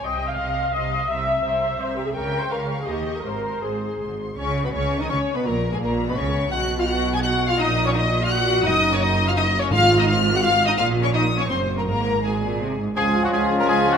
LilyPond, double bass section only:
\new Staff \with { instrumentName = "Double bass section" } { \clef bass \time 3/4 \key aes \major \tempo 4 = 168 c,4 c,4 c,4 | c,4 c,4 c,4 | des,4 des,4 ees,4 | aes,,4 aes,,4 aes,,4 |
\key fis \major cis,8. r16 cis,8. r16 cis,8 r8 | ais,,8. r16 ais,,8. r16 cis,4 | b,,2. | ais,,2. |
\key des \major ges,,2. | aes,,2. | bes,,2 ges,,4 | aes,,2~ aes,,8 r8 |
des,4 des,4 des,4 | }